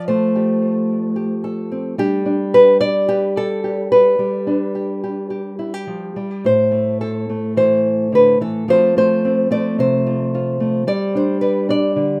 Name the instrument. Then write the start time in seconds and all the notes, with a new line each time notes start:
nylon-string guitar
Already playing: F3
0.08 A3 C5
0.35 G4
1.16 G4
1.44 A4
1.72 C4
1.98 G3 D4 G4
2.26 D4
2.54 B4
2.81 D5
3.09 G4
3.37 A4
3.64 G4
3.92 B4
4.19 G3
4.47 D4
4.75 G4
5.04 G4
5.30 G4
5.59 E4
5.74 G4
5.87 F3
6.16 G3
6.44 A2 C5
6.71 A3
7.01 A4
7.29 A3
7.57 E3 C5
8.12 D3 B4
8.41 E3 A4
8.68 F3 A3 C4 F4 C5
8.97 A3 C5
9.25 C4
9.51 A3 D5
9.79 C3 C5
10.07 F4
10.35 F4
10.60 A3
10.87 G3 D5
11.15 D4 C5
11.41 B4
11.69 D4 D5
11.96 D3